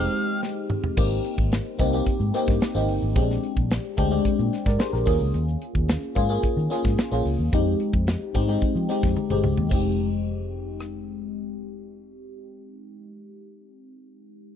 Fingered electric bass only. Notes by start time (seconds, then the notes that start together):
0.97 G#1
1.38 G#1
1.80 C2
2.20 G#2
2.48 G2
2.75 G#1
2.88 G1
3.02 G#1
3.16 A#1
3.57 A#1
3.98 D2
4.25 muted fingered electric bass stroke
4.39 A#2
4.66 G#2
4.93 A#1
5.07 D#2
5.20 C#2
5.34 D#2
5.75 D#2
6.16 G#2
6.44 muted fingered electric bass stroke
6.57 D#3
6.85 G#2
7.12 A#1
7.25 C#2
7.39 D#2
7.53 F2
7.94 F2
8.35 G#2
8.62 muted fingered electric bass stroke
8.75 F3
9.03 F2
9.30 G1
9.44 C#2
9.58 D#2
9.71 F1